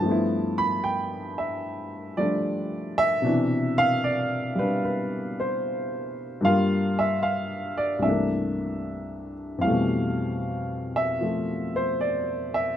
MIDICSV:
0, 0, Header, 1, 2, 480
1, 0, Start_track
1, 0, Key_signature, 0, "major"
1, 0, Tempo, 798935
1, 22, Time_signature, 4, 2, 24, 8
1, 7672, End_track
2, 0, Start_track
2, 0, Title_t, "Grand piano"
2, 0, Program_c, 0, 0
2, 0, Control_c, 0, 64, 127
2, 0, Note_on_c, 0, 43, 50
2, 0, Note_on_c, 0, 81, 92
2, 13, Note_on_c, 0, 53, 52
2, 30, Control_c, 0, 64, 0
2, 32, Note_on_c, 0, 57, 48
2, 48, Note_on_c, 0, 59, 51
2, 67, Note_on_c, 0, 64, 66
2, 130, Control_c, 0, 64, 127
2, 330, Note_off_c, 0, 81, 0
2, 348, Note_on_c, 0, 83, 90
2, 491, Note_off_c, 0, 83, 0
2, 503, Note_on_c, 0, 79, 85
2, 807, Note_off_c, 0, 79, 0
2, 830, Note_on_c, 0, 76, 68
2, 972, Note_off_c, 0, 76, 0
2, 1297, Note_off_c, 0, 53, 0
2, 1305, Note_on_c, 0, 74, 79
2, 1306, Note_on_c, 0, 53, 41
2, 1309, Note_on_c, 0, 55, 36
2, 1310, Note_off_c, 0, 57, 0
2, 1319, Note_on_c, 0, 57, 39
2, 1324, Note_on_c, 0, 62, 43
2, 1764, Note_off_c, 0, 74, 0
2, 1790, Note_on_c, 0, 76, 109
2, 1930, Note_off_c, 0, 43, 0
2, 1934, Note_on_c, 0, 48, 53
2, 1941, Note_off_c, 0, 53, 0
2, 1942, Note_off_c, 0, 62, 0
2, 1943, Note_off_c, 0, 55, 0
2, 1943, Note_on_c, 0, 47, 56
2, 1948, Note_off_c, 0, 57, 0
2, 1951, Control_c, 0, 64, 0
2, 1951, Note_on_c, 0, 62, 51
2, 1956, Note_off_c, 0, 59, 0
2, 1963, Note_on_c, 0, 52, 63
2, 1966, Note_off_c, 0, 64, 0
2, 2048, Control_c, 0, 64, 127
2, 2271, Note_on_c, 0, 77, 102
2, 2285, Note_off_c, 0, 76, 0
2, 2306, Note_off_c, 0, 77, 0
2, 2427, Note_on_c, 0, 74, 74
2, 2736, Note_on_c, 0, 55, 43
2, 2748, Note_off_c, 0, 62, 0
2, 2757, Note_on_c, 0, 62, 41
2, 2757, Note_on_c, 0, 71, 77
2, 2763, Note_off_c, 0, 74, 0
2, 2896, Note_off_c, 0, 71, 0
2, 2913, Note_on_c, 0, 71, 67
2, 2986, Note_off_c, 0, 71, 0
2, 3243, Note_on_c, 0, 72, 67
2, 3693, Note_off_c, 0, 72, 0
2, 3851, Note_off_c, 0, 55, 0
2, 3851, Note_on_c, 0, 43, 58
2, 3860, Note_off_c, 0, 48, 0
2, 3860, Note_on_c, 0, 55, 53
2, 3864, Note_off_c, 0, 47, 0
2, 3871, Note_off_c, 0, 62, 0
2, 3872, Control_c, 0, 64, 0
2, 3872, Note_on_c, 0, 58, 55
2, 3873, Note_on_c, 0, 77, 88
2, 3874, Note_off_c, 0, 52, 0
2, 3882, Note_on_c, 0, 65, 62
2, 3977, Control_c, 0, 64, 127
2, 4198, Note_on_c, 0, 76, 88
2, 4206, Note_off_c, 0, 77, 0
2, 4337, Note_off_c, 0, 76, 0
2, 4341, Note_on_c, 0, 77, 79
2, 4647, Note_off_c, 0, 77, 0
2, 4671, Note_on_c, 0, 74, 80
2, 4799, Note_on_c, 0, 36, 44
2, 4803, Note_off_c, 0, 43, 0
2, 4812, Note_on_c, 0, 43, 39
2, 4814, Note_off_c, 0, 74, 0
2, 4822, Note_on_c, 0, 52, 42
2, 4822, Note_on_c, 0, 76, 71
2, 4823, Note_off_c, 0, 55, 0
2, 4829, Note_off_c, 0, 58, 0
2, 4833, Note_off_c, 0, 65, 0
2, 4834, Control_c, 0, 64, 0
2, 4838, Note_on_c, 0, 57, 43
2, 4854, Note_on_c, 0, 58, 43
2, 4862, Note_on_c, 0, 62, 51
2, 4954, Control_c, 0, 64, 127
2, 5607, Note_off_c, 0, 76, 0
2, 5758, Note_on_c, 0, 41, 50
2, 5766, Note_off_c, 0, 52, 0
2, 5772, Note_off_c, 0, 36, 0
2, 5775, Note_on_c, 0, 52, 49
2, 5776, Note_on_c, 0, 77, 77
2, 5779, Note_off_c, 0, 43, 0
2, 5791, Note_off_c, 0, 57, 0
2, 5793, Control_c, 0, 64, 0
2, 5793, Note_on_c, 0, 55, 45
2, 5799, Note_off_c, 0, 58, 0
2, 5803, Note_off_c, 0, 62, 0
2, 5807, Note_on_c, 0, 57, 49
2, 5823, Note_on_c, 0, 47, 60
2, 5905, Control_c, 0, 64, 127
2, 6236, Note_off_c, 0, 77, 0
2, 6585, Note_on_c, 0, 76, 89
2, 6734, Note_on_c, 0, 53, 41
2, 6736, Note_off_c, 0, 57, 0
2, 6745, Note_on_c, 0, 57, 38
2, 7044, Note_off_c, 0, 76, 0
2, 7065, Note_on_c, 0, 72, 72
2, 7214, Note_on_c, 0, 74, 72
2, 7226, Note_off_c, 0, 72, 0
2, 7523, Note_off_c, 0, 74, 0
2, 7536, Note_on_c, 0, 76, 87
2, 7572, Note_off_c, 0, 76, 0
2, 7672, Note_off_c, 0, 41, 0
2, 7672, Note_off_c, 0, 47, 0
2, 7672, Note_off_c, 0, 52, 0
2, 7672, Note_off_c, 0, 53, 0
2, 7672, Note_off_c, 0, 55, 0
2, 7672, Note_off_c, 0, 57, 0
2, 7672, End_track
0, 0, End_of_file